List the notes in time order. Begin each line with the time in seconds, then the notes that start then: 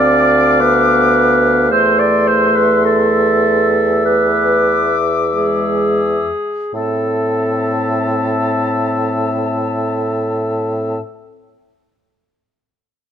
Already playing: D2 C4 D5 F5 D6
0.60 B3 B4
1.70 E2 A3 C5 E5 C6
1.99 D5
2.27 C5
2.56 B4
2.85 A4
4.04 B4 D6
5.34 G#3 G#4
6.74 A2 C4 A4 E5 A5